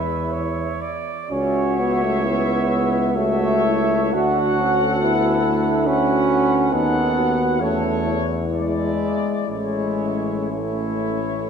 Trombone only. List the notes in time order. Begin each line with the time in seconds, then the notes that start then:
Already playing: G#3
1.31 C#4
1.80 B3
2.03 A3
2.26 B3
3.16 A3
4.14 F#4
5.02 E4
5.87 C#4
6.73 B3
7.60 A3
8.52 G#3
9.48 G#3
10.51 A3